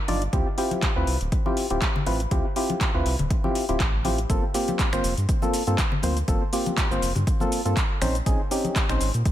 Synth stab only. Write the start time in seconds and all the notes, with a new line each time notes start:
0.08 D4 D#4 F4 D5
0.33 C4 E4 F4 G4
0.58 C4 E4 F4 G4
0.96 C4 E4 F4 B4
1.46 C4 E4 F4 G4
1.70 C4 E4 F4 G4
2.06 C4 E4 F4 B4
2.31 C4 E4 F4 G4
2.56 C4 E4 F4 G4
2.94 C4 E4 F4 B4
3.44 C4 E4 F4 G4
3.69 C4 E4 F4 G4
4.05 C4 E4 F4 G4
4.30 A#3 C4 F4 A4
4.54 A#3 C4 F4 G4
4.93 A#3 C4 F4 C5
5.42 A#3 C4 F4 A4
5.67 A#3 C4 F4 A4
6.03 A#3 C4 F4 C5
6.28 A#3 C4 F4 A4
6.53 A#3 C4 F4 G4
6.91 A#3 C4 F4 C5
7.40 A#3 C4 F4 A4
7.65 A#3 C4 F4 A4
8.01 C4 C#4 D#4 C5
8.26 C4 C#4 D#4 G#4
8.51 C4 C#4 D#4 G4
8.89 C4 C#4 D#4 C5